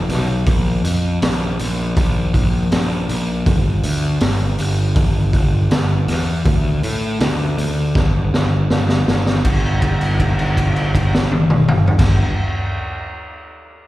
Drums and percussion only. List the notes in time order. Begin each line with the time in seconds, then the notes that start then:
0.09 snare, open hi-hat
0.46 kick, open hi-hat
0.85 open hi-hat
1.22 snare, open hi-hat
1.59 open hi-hat
1.97 kick, open hi-hat
2.34 kick, open hi-hat
2.72 snare, open hi-hat
3.09 open hi-hat
3.46 kick, open hi-hat
3.83 open hi-hat
4.21 snare, open hi-hat
4.58 open hi-hat
4.96 kick, open hi-hat
5.33 kick, open hi-hat
5.71 snare, open hi-hat
6.08 snare, open hi-hat
6.45 kick, open hi-hat
6.83 open hi-hat
7.20 snare, open hi-hat
7.58 open hi-hat
7.95 kick, snare
8.34 snare
8.70 snare
8.89 snare
9.08 snare
9.26 snare
9.45 kick, crash
9.82 kick, crash
10.01 crash
10.20 kick, crash
10.39 crash
10.57 kick, crash
10.76 crash
10.95 kick, crash
11.14 snare
11.32 high tom
11.50 mid tom
11.68 mid tom
11.87 floor tom
11.99 kick, snare, crash